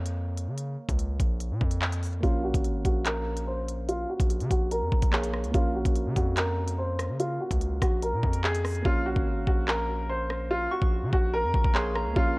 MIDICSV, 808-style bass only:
0, 0, Header, 1, 2, 480
1, 0, Start_track
1, 0, Key_signature, -5, "minor"
1, 0, Tempo, 413793
1, 669, Time_signature, 4, 2, 24, 8
1, 14369, End_track
2, 0, Start_track
2, 0, Title_t, "808-style bass"
2, 0, Program_c, 0, 38
2, 0, Note_on_c, 0, 41, 105
2, 549, Note_on_c, 0, 49, 99
2, 566, Note_off_c, 0, 41, 0
2, 891, Note_off_c, 0, 49, 0
2, 1028, Note_on_c, 0, 37, 103
2, 1374, Note_off_c, 0, 37, 0
2, 1387, Note_on_c, 0, 34, 104
2, 1749, Note_on_c, 0, 46, 100
2, 1766, Note_off_c, 0, 34, 0
2, 1863, Note_off_c, 0, 46, 0
2, 1868, Note_on_c, 0, 41, 105
2, 2560, Note_off_c, 0, 41, 0
2, 2589, Note_on_c, 0, 34, 112
2, 2934, Note_off_c, 0, 34, 0
2, 2949, Note_on_c, 0, 32, 101
2, 3295, Note_off_c, 0, 32, 0
2, 3308, Note_on_c, 0, 34, 104
2, 4702, Note_off_c, 0, 34, 0
2, 4869, Note_on_c, 0, 34, 109
2, 5109, Note_on_c, 0, 49, 99
2, 5127, Note_off_c, 0, 34, 0
2, 5223, Note_off_c, 0, 49, 0
2, 5228, Note_on_c, 0, 34, 106
2, 5589, Note_on_c, 0, 41, 103
2, 5607, Note_off_c, 0, 34, 0
2, 5703, Note_off_c, 0, 41, 0
2, 5708, Note_on_c, 0, 34, 105
2, 5824, Note_off_c, 0, 34, 0
2, 5829, Note_on_c, 0, 34, 113
2, 6309, Note_on_c, 0, 37, 100
2, 6326, Note_off_c, 0, 34, 0
2, 6423, Note_off_c, 0, 37, 0
2, 6429, Note_on_c, 0, 34, 113
2, 6774, Note_off_c, 0, 34, 0
2, 6789, Note_on_c, 0, 34, 108
2, 7029, Note_on_c, 0, 49, 100
2, 7046, Note_off_c, 0, 34, 0
2, 7143, Note_off_c, 0, 49, 0
2, 7148, Note_on_c, 0, 41, 105
2, 8228, Note_on_c, 0, 49, 96
2, 8246, Note_off_c, 0, 41, 0
2, 8570, Note_off_c, 0, 49, 0
2, 8709, Note_on_c, 0, 37, 101
2, 9054, Note_off_c, 0, 37, 0
2, 9068, Note_on_c, 0, 34, 102
2, 9429, Note_on_c, 0, 46, 101
2, 9446, Note_off_c, 0, 34, 0
2, 9543, Note_off_c, 0, 46, 0
2, 9548, Note_on_c, 0, 41, 109
2, 10240, Note_off_c, 0, 41, 0
2, 10269, Note_on_c, 0, 34, 112
2, 10614, Note_off_c, 0, 34, 0
2, 10629, Note_on_c, 0, 32, 104
2, 10974, Note_off_c, 0, 32, 0
2, 10988, Note_on_c, 0, 34, 101
2, 12382, Note_off_c, 0, 34, 0
2, 12548, Note_on_c, 0, 34, 107
2, 12789, Note_on_c, 0, 49, 101
2, 12806, Note_off_c, 0, 34, 0
2, 12903, Note_off_c, 0, 49, 0
2, 12908, Note_on_c, 0, 34, 104
2, 13268, Note_on_c, 0, 41, 100
2, 13286, Note_off_c, 0, 34, 0
2, 13383, Note_off_c, 0, 41, 0
2, 13388, Note_on_c, 0, 34, 105
2, 13504, Note_off_c, 0, 34, 0
2, 13508, Note_on_c, 0, 34, 112
2, 13988, Note_on_c, 0, 37, 98
2, 14005, Note_off_c, 0, 34, 0
2, 14102, Note_off_c, 0, 37, 0
2, 14108, Note_on_c, 0, 34, 115
2, 14369, Note_off_c, 0, 34, 0
2, 14369, End_track
0, 0, End_of_file